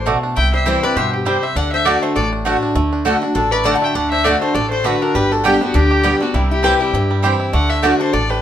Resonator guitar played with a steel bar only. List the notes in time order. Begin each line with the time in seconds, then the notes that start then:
0.37 E5
0.54 C5
0.67 G4
0.83 B4
0.97 C5
1.13 muted resonator guitar played with a steel bar stroke
1.27 G4
1.43 C5
1.57 D5
1.74 C5
1.86 A4
2.03 A4
2.16 A4
3.35 F#4
3.52 B4
3.65 D5
3.75 F#5
3.85 E5
3.95 D5
4.12 C5
4.25 A4
4.42 A4
4.54 A4
4.72 A4
4.86 F#4
5.02 F#4
5.15 G4
5.32 F#4
5.45 D4
5.62 D4
5.75 D4
6.22 D4
6.35 C4
6.51 E4
6.64 G4
6.81 E4
7.53 D5
7.70 C5
7.84 A4
8.01 A4
8.13 A4
8.29 G4